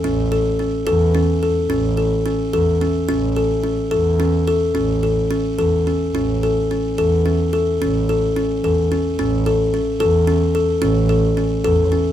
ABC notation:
X:1
M:11/8
L:1/8
Q:1/4=109
K:A
V:1 name="Kalimba"
C A C A C A C A C A C | C A C A C A C A C A C | C A C A C A C A C A C | C A C A C A C A C A C |]
V:2 name="Double bass" clef=bass
A,,,3 E,,3 A,,,3 E,, z | A,,,3 E,,3 A,,,3 E,, z | A,,,3 E,,3 A,,,3 E,, z | A,,,3 E,,3 A,,,3 E,, z |]